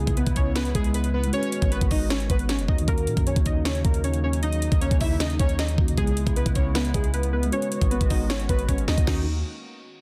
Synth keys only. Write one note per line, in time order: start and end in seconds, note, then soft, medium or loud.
0.00 0.15 G#3 medium
0.00 0.15 G#4 loud
0.17 0.33 B3 medium
0.17 0.33 B4 medium
0.36 0.53 C#4 medium
0.36 0.52 C#5 medium
0.55 0.72 B3 medium
0.55 0.71 B4 medium
0.75 0.91 G#3 medium
0.75 0.91 G#4 medium
0.94 1.11 B3 medium
0.94 1.10 B4 medium
1.14 1.30 B3 medium
1.14 1.29 B4 medium
1.33 1.70 C#4 medium
1.33 1.70 C#5 loud
1.72 1.88 B3 medium
1.72 1.87 B4 medium
1.91 2.07 D#4 medium
1.91 2.07 D#5 medium
2.10 2.27 C#4 medium
2.10 2.26 C#5 medium
2.30 2.46 B3 medium
2.30 2.46 B4 loud
2.49 2.65 C#4 medium
2.49 2.65 C#5 medium
2.69 2.85 D#4 medium
2.69 2.84 D#5 medium
2.88 3.25 A#3 medium
2.88 3.24 A#4 loud
3.27 3.43 C#4 medium
3.27 3.42 C#5 medium
3.46 3.62 D#4 medium
3.46 3.62 D#5 medium
3.65 3.81 C#4 medium
3.65 3.81 C#5 medium
3.85 4.01 A#3 medium
3.85 4.00 A#4 medium
4.04 4.20 C#4 medium
4.04 4.20 C#5 medium
4.24 4.40 C#4 medium
4.24 4.39 C#5 medium
4.43 4.79 D#4 medium
4.43 4.79 D#5 loud
4.81 4.98 C#4 medium
4.81 4.97 C#5 medium
5.01 5.17 E4 medium
5.01 5.16 E5 medium
5.20 5.37 D#4 medium
5.20 5.36 D#5 medium
5.40 5.56 C#4 medium
5.40 5.55 C#5 medium
5.59 5.75 D#4 medium
5.59 5.75 D#5 medium
5.98 6.34 G#3 medium
5.98 6.34 G#4 loud
6.36 6.53 B3 medium
6.36 6.52 B4 medium
6.56 6.72 C#4 medium
6.56 6.72 C#5 medium
6.75 6.91 B3 medium
6.75 6.91 B4 medium
6.94 7.10 G#3 medium
6.94 7.10 G#4 medium
7.14 7.30 B3 medium
7.14 7.29 B4 medium
7.33 7.49 B3 medium
7.33 7.49 B4 medium
7.53 7.89 C#4 medium
7.53 7.89 C#5 loud
7.91 8.07 B3 medium
7.91 8.07 B4 medium
8.10 8.27 D#4 medium
8.10 8.26 D#5 medium
8.30 8.46 C#4 medium
8.30 8.45 C#5 medium
8.49 8.66 B3 medium
8.49 8.65 B4 loud
8.68 8.85 C#4 medium
8.68 8.84 C#5 medium
8.88 9.04 D#4 medium
8.88 9.04 D#5 medium
9.07 9.25 D#4 medium